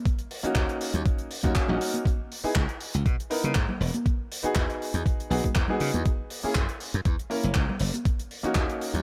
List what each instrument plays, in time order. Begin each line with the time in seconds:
0.06 kick, closed hi-hat
0.19 closed hi-hat
0.31 open hi-hat
0.43 grand piano A#3 C#4 D#4 F#4, muted slap bass stroke, closed hi-hat
0.55 slap bass D#2, kick, clap, closed hi-hat
0.69 closed hi-hat
0.81 open hi-hat
0.94 slap bass D#2, closed hi-hat, low conga
1.06 kick, closed hi-hat
1.18 closed hi-hat
1.31 open hi-hat
1.43 slap bass D#2, grand piano A#3 C#4 D#4 F#4, kick, high conga, low conga
1.55 grand piano A#3 C#4 D#4 F#4, kick, clap, closed hi-hat
1.68 slap bass A#1, grand piano A#3 C#4 D#4 F#4, high conga, low conga
1.81 open hi-hat
1.94 closed hi-hat, high conga
2.05 kick, closed hi-hat
2.32 open hi-hat
2.44 grand piano B3 D#4 E4 G#4, muted slap bass stroke, open hi-hat
2.55 slap bass C#2, kick, clap, closed hi-hat
2.69 closed hi-hat
2.81 open hi-hat
2.94 slap bass C#2, closed hi-hat
3.06 slap bass B2, kick, closed hi-hat
3.20 closed hi-hat
3.30 grand piano B3 D#4 E4 A#4, open hi-hat
3.44 slap bass C#3, closed hi-hat, high conga, low conga
3.55 slap bass G#2, kick, clap, closed hi-hat
3.69 high conga, low conga
3.80 slap bass E1, open hi-hat
3.94 closed hi-hat, high conga
4.06 kick, closed hi-hat
4.32 open hi-hat
4.43 grand piano B3 D#4 F#4 G#4, muted slap bass stroke, closed hi-hat
4.55 slap bass E2, kick, clap, closed hi-hat
4.70 closed hi-hat
4.82 open hi-hat
4.94 slap bass E2, closed hi-hat
5.06 kick, closed hi-hat
5.20 closed hi-hat
5.30 slap bass B1, grand piano B3 D#4 F#4 G#4, open hi-hat
5.44 kick, closed hi-hat, high conga, low conga
5.55 slap bass E2, kick, clap, closed hi-hat
5.68 grand piano B3 D#4 F#4 G#4, high conga, low conga
5.80 slap bass C#3, open hi-hat
5.94 slap bass E2, closed hi-hat, high conga
6.05 kick, closed hi-hat
6.30 open hi-hat
6.43 grand piano A#3 C#4 E4 G#4, muted slap bass stroke, open hi-hat
6.55 slap bass F#2, kick, clap, closed hi-hat
6.69 closed hi-hat
6.80 open hi-hat
6.94 slap bass F#2, closed hi-hat
7.05 slap bass E2, kick, closed hi-hat
7.19 closed hi-hat
7.30 grand piano A#3 C#4 E4 A#4, open hi-hat
7.43 slap bass F#1, closed hi-hat, high conga, low conga
7.54 slap bass C#2, kick, clap, closed hi-hat
7.69 high conga, low conga
7.79 slap bass F#1, open hi-hat
7.94 closed hi-hat, high conga
8.05 kick, closed hi-hat
8.19 closed hi-hat
8.31 open hi-hat
8.43 grand piano A#3 C#4 D#4 F#4, muted slap bass stroke, closed hi-hat
8.55 slap bass D#2, kick, clap, closed hi-hat
8.70 closed hi-hat
8.81 open hi-hat
8.94 slap bass D#2, closed hi-hat, low conga